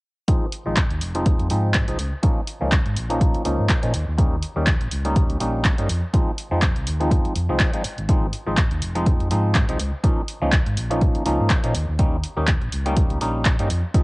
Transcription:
0.28 clav F3 G#3 C4 D#4, kick, closed hi-hat
0.53 open hi-hat
0.66 fingered electric bass G#1, clav F3 G#3 C4 D#4
0.77 kick, clap, closed hi-hat
0.91 fingered electric bass D#2, closed hi-hat
1.01 fingered electric bass F1, open hi-hat
1.15 clav F3 G#3 C4 D#4, closed hi-hat
1.26 kick, closed hi-hat
1.39 fingered electric bass F2, closed hi-hat
1.50 fingered electric bass G#2, clav F3 G#3 C4 D#4, open hi-hat
1.74 kick, clap, closed hi-hat
1.88 fingered electric bass C2, clav F3 G#3 C4 D#4, closed hi-hat
1.99 fingered electric bass C#2, open hi-hat
2.23 clav F3 A#3 C#4 D#4, kick, closed hi-hat
2.47 open hi-hat
2.61 fingered electric bass C#2, clav F3 A#3 C#4 D#4
2.72 kick, clap, closed hi-hat
2.86 fingered electric bass G#2, closed hi-hat
2.96 fingered electric bass A#1, open hi-hat
3.10 clav F3 A#3 C#4 D#4, closed hi-hat
3.21 kick, closed hi-hat
3.34 muted fingered electric bass stroke, closed hi-hat
3.45 fingered electric bass C#2, clav F3 A#3 C#4 D#4, open hi-hat
3.59 fingered electric bass G#2
3.69 kick, clap, closed hi-hat
3.83 fingered electric bass A#2, clav F3 A#3 C#4 D#4, closed hi-hat
3.94 fingered electric bass D#2, open hi-hat
4.08 fingered electric bass D#2
4.18 clav G3 A#3 C#4 D#4, kick, closed hi-hat
4.43 open hi-hat
4.56 fingered electric bass D#2, clav G3 A#3 C#4 D#4
4.67 kick, clap, closed hi-hat
4.81 fingered electric bass A#1, closed hi-hat
4.91 fingered electric bass C#2, open hi-hat
5.05 clav G3 A#3 C#4 D#4, closed hi-hat
5.16 kick, closed hi-hat
5.30 fingered electric bass C#2, closed hi-hat
5.40 fingered electric bass A#1, clav G3 A#3 C#4 D#4, open hi-hat
5.65 kick, clap, closed hi-hat
5.78 fingered electric bass G2, clav G3 A#3 C#4 D#4, closed hi-hat
5.89 fingered electric bass F2, open hi-hat
6.13 clav F3 G#3 C4 D#4, kick, closed hi-hat
6.38 open hi-hat
6.51 fingered electric bass F2, clav F3 G#3 C4 D#4
6.62 kick, clap, closed hi-hat
6.76 fingered electric bass C2, closed hi-hat
6.87 fingered electric bass D#2, open hi-hat
7.00 clav F3 G#3 C4 D#4, closed hi-hat
7.11 kick, closed hi-hat
7.25 muted fingered electric bass stroke, closed hi-hat
7.36 fingered electric bass F2, open hi-hat
7.49 fingered electric bass C2, clav F3 G#3 C4 D#4
7.60 kick, clap, closed hi-hat
7.73 clav F3 G#3 C4 D#4, closed hi-hat
7.84 muted fingered electric bass stroke, open hi-hat
7.98 fingered electric bass G#1, closed hi-hat
8.09 clav F3 G#3 C4 D#4, kick, closed hi-hat
8.33 open hi-hat
8.47 fingered electric bass G#1, clav F3 G#3 C4 D#4
8.57 kick, clap, closed hi-hat
8.71 fingered electric bass D#2, closed hi-hat
8.82 fingered electric bass F1, open hi-hat
8.95 clav F3 G#3 C4 D#4, closed hi-hat
9.06 kick, closed hi-hat
9.20 fingered electric bass F2, closed hi-hat
9.31 fingered electric bass G#2, clav F3 G#3 C4 D#4, open hi-hat
9.55 kick, clap, closed hi-hat
9.68 fingered electric bass C2, clav F3 G#3 C4 D#4, closed hi-hat
9.80 fingered electric bass C#2, open hi-hat
10.04 clav F3 A#3 C#4 D#4, kick, closed hi-hat
10.28 open hi-hat
10.42 fingered electric bass C#2, clav F3 A#3 C#4 D#4
10.52 kick, clap, closed hi-hat
10.66 fingered electric bass G#2, closed hi-hat
10.77 fingered electric bass A#1, open hi-hat
10.90 clav F3 A#3 C#4 D#4, closed hi-hat
11.01 kick, closed hi-hat
11.15 muted fingered electric bass stroke, closed hi-hat
11.26 fingered electric bass C#2, clav F3 A#3 C#4 D#4, open hi-hat
11.40 fingered electric bass G#2
11.50 kick, clap, closed hi-hat
11.63 fingered electric bass A#2, clav F3 A#3 C#4 D#4, closed hi-hat
11.75 fingered electric bass D#2, open hi-hat
11.88 fingered electric bass D#2
11.99 clav G3 A#3 C#4 D#4, kick, closed hi-hat
12.24 open hi-hat
12.37 fingered electric bass D#2, clav G3 A#3 C#4 D#4
12.47 kick, clap, closed hi-hat
12.62 fingered electric bass A#1, closed hi-hat
12.72 fingered electric bass C#2, open hi-hat
12.86 clav G3 A#3 C#4 D#4, closed hi-hat
12.96 kick, closed hi-hat
13.10 fingered electric bass C#2, closed hi-hat
13.21 fingered electric bass A#1, clav G3 A#3 C#4 D#4, open hi-hat
13.45 kick, clap, closed hi-hat
13.59 fingered electric bass G2, clav G3 A#3 C#4 D#4, closed hi-hat
13.70 fingered electric bass F2, open hi-hat
13.94 clav F3 G#3 C4 D#4, kick, closed hi-hat

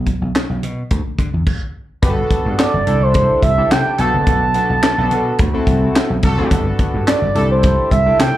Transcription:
0.06 kick, closed hi-hat
0.22 slap bass B1
0.35 snare, clap, closed hi-hat
0.50 slap bass B1
0.63 slap bass B2, closed hi-hat
0.90 slap bass D2, kick, closed hi-hat
1.18 slap bass D3, kick, closed hi-hat
1.34 slap bass E2
1.47 kick, crash
2.02 slap bass G1, analog polysynth B3 D4 F#4 G4, horn section B3 G4 B4, kick, closed hi-hat
2.10 analog polysynth A4
2.30 kick, closed hi-hat
2.46 slap bass G2
2.59 analog synth lead D5, snare, clap, closed hi-hat
2.74 slap bass G1
2.86 slap bass C2, horn section A3 D4 E4 A4, analog polysynth D4 E4 G4 A4, closed hi-hat
3.03 analog synth lead C5
3.14 kick, closed hi-hat
3.42 slap bass C2, analog synth lead E5, kick, closed hi-hat
3.58 analog polysynth D4 E4 G4 A4
3.71 slap bass C3, analog synth lead G5, snare, clap, closed hi-hat
3.98 slap bass B1, horn section A3 D4 F#4 A4, analog polysynth B3 D4 F#4 A4, analog synth lead A5, closed hi-hat
4.14 slap bass F#1
4.27 slap bass B1, horn section A3 D4 F#4 A4, kick, closed hi-hat
4.54 analog polysynth B3 D4 F#4 A4, closed hi-hat
4.70 slap bass B1
4.83 analog polysynth B3 D4 F#4 A4, snare, clap, closed hi-hat
4.98 slap bass B1, analog polysynth B3 D4 F#4 A4
5.11 slap bass B2, horn section A3 D4 F#4 A4, closed hi-hat
5.38 slap bass D2, kick, closed hi-hat
5.54 analog polysynth C4 E4 F#4 A4
5.67 slap bass C2, kick, closed hi-hat
5.95 snare, clap, closed hi-hat
6.10 slap bass B1
6.23 slap bass C2, horn section A3 D4 F#4 A4, kick, closed hi-hat
6.38 slap bass D2, analog polysynth C4 E4 F#4 A4
6.51 slap bass G1, analog polysynth B3 D4 F#4 A4, horn section B3 G4 B4, kick, closed hi-hat
6.79 kick, closed hi-hat
6.94 slap bass G2
7.07 analog synth lead D5, snare, clap, closed hi-hat
7.22 slap bass G1
7.35 slap bass C2, horn section A3 D4 E4 A4, analog polysynth D4 E4 G4 A4, closed hi-hat
7.51 analog synth lead C5
7.63 kick, closed hi-hat
7.91 slap bass C2, analog synth lead E5, kick, closed hi-hat
8.06 analog polysynth D4 E4 G4 A4
8.19 slap bass C3, analog synth lead G5, snare, clap, closed hi-hat

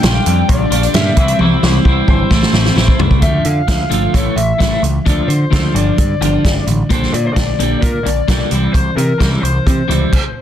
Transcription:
0.03 picked electric bass A#1, clean electric guitar D3 G3 D4 F4, lead electric guitar G5, snare, closed hi-hat
0.26 picked electric bass F2, closed hi-hat
0.49 picked electric bass A#1, lead electric guitar D5, kick, closed hi-hat
0.71 picked electric bass A#1, clean electric guitar G3 D4 F4, closed hi-hat
0.83 closed hi-hat
0.93 picked electric bass G2, clean electric guitar A#2 D3 G3 D4 F4, lead electric guitar E5, snare, closed hi-hat
1.17 picked electric bass C2, clean electric guitar C3 E3 G3 C4 E4, kick, closed hi-hat
1.28 closed hi-hat
1.39 picked electric bass C2, clean electric guitar C3 E3 G3 C4 E4, lead electric guitar C5, high tom
1.63 picked electric bass C2, clean electric guitar G3 C4 E4, snare
1.85 picked electric bass C2, clean electric guitar E3 G3 C4 E4, kick
2.08 picked electric bass G1, lead electric guitar C5, kick
2.30 picked electric bass A1, clean electric guitar A2 E3 A3 C4 E4, kick, snare
2.42 snare
2.53 picked electric bass A1, clean electric guitar A3 C4 E4, snare
2.66 snare
2.76 picked electric bass A1, clean electric guitar A2 E3 A3 C4 E4, snare
2.88 kick
2.98 picked electric bass C2, clean electric guitar A3 C4 E4, floor tom
3.11 kick
3.21 picked electric bass D2, clean electric guitar D3 F3 A3, lead electric guitar E5, kick, closed hi-hat
3.44 clean electric guitar D3 F3, picked electric bass D3, lead electric guitar F5, closed hi-hat
3.68 picked electric bass D2, clean electric guitar D3 F3, lead electric guitar F5, kick, snare, closed hi-hat
3.90 picked electric bass G1, clean electric guitar D3 F3 A3, closed hi-hat
4.13 picked electric bass A1, clean electric guitar A2 E3 A3, lead electric guitar C#5, kick, closed hi-hat
4.36 picked electric bass A1, clean electric guitar A2 E3, lead electric guitar E5, closed hi-hat
4.58 picked electric bass A1, clean electric guitar A2 E3 A3, kick, snare, closed hi-hat
4.82 picked electric bass C#2, clean electric guitar A2 E3, closed hi-hat
5.06 picked electric bass D2, clean electric guitar D3 F3 A3, lead electric guitar D5, kick, closed hi-hat
5.28 picked electric bass D3, clean electric guitar D3 F3, lead electric guitar C5, closed hi-hat
5.50 picked electric bass D2, clean electric guitar D3 F3 A3, lead electric guitar C5, kick, snare, closed hi-hat
5.74 picked electric bass G1, clean electric guitar G2 D3 F3, lead electric guitar D5, closed hi-hat
5.97 clean electric guitar G2 D3, picked electric bass G2, kick, closed hi-hat
6.21 picked electric bass G1, clean electric guitar G2 D3 F3, closed hi-hat
6.44 picked electric bass G1, clean electric guitar D3, kick, snare, closed hi-hat
6.67 picked electric bass A1, clean electric guitar G2 D3, closed hi-hat
6.89 picked electric bass A#1, clean electric guitar A#2 D3 G3, lead electric guitar C5, kick, closed hi-hat
7.03 snare
7.14 picked electric bass A#2, clean electric guitar A#2 D3, lead electric guitar D5, closed hi-hat
7.27 lead electric guitar C5
7.33 picked electric bass A#1, clean electric guitar A#2 D3, lead electric guitar D5, kick, snare, closed hi-hat
7.59 picked electric bass A#1, clean electric guitar A#2 D3 G3, closed hi-hat
7.82 picked electric bass A#2, lead electric guitar A#4, kick, closed hi-hat
8.03 picked electric bass A#1, clean electric guitar A#2 D3, lead electric guitar D5, closed hi-hat
8.28 picked electric bass B1, clean electric guitar A#2 D3 G3, kick, snare, closed hi-hat
8.51 picked electric bass C2, clean electric guitar C3 E3 G3, closed hi-hat
8.73 picked electric bass C2, clean electric guitar C3 E3, lead electric guitar C5, kick, closed hi-hat
8.97 picked electric bass C3, clean electric guitar C3 E3, lead electric guitar A#4, closed hi-hat
9.19 picked electric bass C2, clean electric guitar C3 E3 G3, lead electric guitar A#4, kick, snare, closed hi-hat
9.42 picked electric bass C2, clean electric guitar C3 E3, lead electric guitar C5, closed hi-hat
9.66 picked electric bass C3, clean electric guitar C3 E3, kick, closed hi-hat
9.88 picked electric bass C#2, clean electric guitar C3 E3 G3, closed hi-hat
10.13 kick, crash

